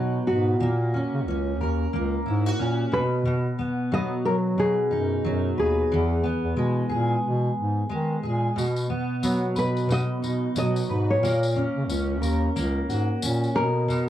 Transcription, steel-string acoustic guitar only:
0.00 0.68 B2 medium
0.00 0.60 F#3 medium
0.00 0.68 B3 soft
0.00 0.68 D#4 soft
0.00 0.26 B4 medium
0.27 0.68 B4 soft
0.60 1.92 A#3 medium
0.94 1.26 C#4 soft
1.28 2.58 C#4 medium
1.61 3.01 A#4 medium
1.93 3.00 A#3 medium
2.26 2.46 E4 medium
2.46 3.00 F#4 soft
2.59 3.00 C#4 medium
2.92 3.24 B2 medium
3.26 4.56 B2 medium
3.59 6.23 B3 medium
3.92 5.23 F#3 medium
4.58 5.99 B2 medium
4.91 5.99 D#4 soft
5.25 5.99 F#3 medium
5.58 6.89 B4 medium
5.92 7.24 E3 medium
6.24 8.89 B3 medium
6.57 7.88 G#3 medium
6.90 8.22 G#4 medium
7.89 8.64 G#3 medium
8.23 8.65 G#4 soft
8.56 9.87 B2 medium
8.89 11.30 B3 medium
9.23 10.55 F#3 medium
9.55 10.88 B4 soft
9.89 11.30 B2 medium
10.22 11.30 D#4 soft
10.55 11.23 F#3 medium
10.89 11.30 B4 soft
11.23 12.55 A#3 medium
11.56 11.88 C#4 medium
11.90 13.21 C#4 medium
12.22 13.63 A#4 medium
12.56 13.63 A#3 medium
12.89 14.09 F#4 medium
13.23 13.64 C#4 medium
13.55 13.87 B2 medium
13.88 14.09 B2 medium

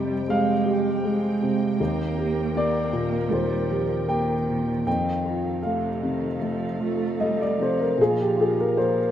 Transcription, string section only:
0.00 4.86 C4 soft
0.00 1.80 G4 soft
0.00 4.87 G5 soft
1.80 4.87 A#4 soft
4.86 9.11 D#4 soft
4.86 7.98 A4 soft
4.86 9.11 F5 soft
7.97 9.11 A#4 soft

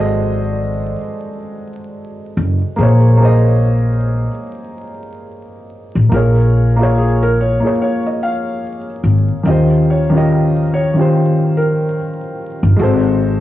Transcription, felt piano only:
6.14 6.96 A#4 medium
6.98 7.19 G#4 medium
7.22 7.37 A#4 medium
7.40 7.77 C#5 medium
7.82 8.05 C#5 medium
8.06 8.20 D#5 medium
8.23 8.85 F5 medium
9.47 9.84 D#5 medium
9.90 10.26 C#5 medium
10.74 10.95 C#5 medium
11.57 12.77 A#4 medium

